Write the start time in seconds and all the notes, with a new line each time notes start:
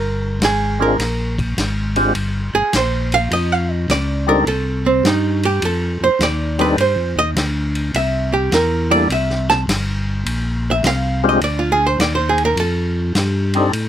Already playing: G1 A#4
0.40 G#1, snare, hi-hat pedal, ride
0.45 G#4
0.79 G#3 C4 D4 F4 G#4 A#4
0.98 A#1, snare, ride
1.38 kick, ride
1.57 G#1, snare, hi-hat pedal, ride
1.96 G#3 C4 D4 F4 G4, ride
2.15 G1, ride
2.54 G1 G#4
2.73 A#1 C5, snare, hi-hat pedal, ride
3.12 F5, ride
3.31 F2 D#5, ride
3.52 F5
3.71 D#5
3.88 C#2 D5, snare, hi-hat pedal, ride
4.27 G3 C4 D4 D#4 A4 A#4
4.46 C2 A4, ride
4.86 C4
5.03 G2 D#4, snare, hi-hat pedal, ride
5.43 G4, ride
5.62 F2 A4, ride
6.00 F2 C5
6.19 D#2 D5, snare, hi-hat pedal, ride
6.59 G3 C4 D4 D#4 A4 B4, ride
6.77 G2 C5, ride
6.96 F2
7.16 D#2 D#5
7.35 D2, snare, hi-hat pedal, ride
7.75 ride
7.94 C2 E5, ride
8.33 G4
8.52 E2 A#4, snare, hi-hat pedal, ride
8.91 G3 A#3 D4 E4 A4 D5, ride
9.09 C2 E5, ride
9.30 snare
9.49 A5, snare
9.67 G1, snare, hi-hat pedal, ride
10.25 A#1, ride
10.71 E5
10.83 C2 F5, snare, hi-hat pedal, ride
11.24 G#3 C4 D4 F4 G4
11.29 D#5
11.41 D2 D5, ride
11.59 F4
11.72 G#4
11.86 C5
11.99 D#2 D5, snare, hi-hat pedal, ride
12.15 C5
12.29 G#4
12.38 ride
12.45 A#4
12.56 F2 A4, ride
13.15 G2, snare, hi-hat pedal, ride
13.54 G3 C4 D4 D#4 A4, ride
13.73 A2, ride